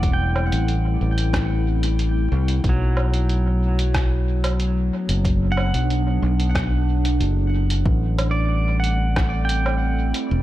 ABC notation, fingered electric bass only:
X:1
M:4/4
L:1/16
Q:1/4=92
K:Ador
V:1 name="Fingered electric bass" clef=bass
E,,,3 A,,,3 A,,,8 C,,2 | B,,,12- B,,,2 z F,,,- | F,,,3 B,,,3 B,,,6 F,,,4 | A,,,12- A,,,2 z E,,, |]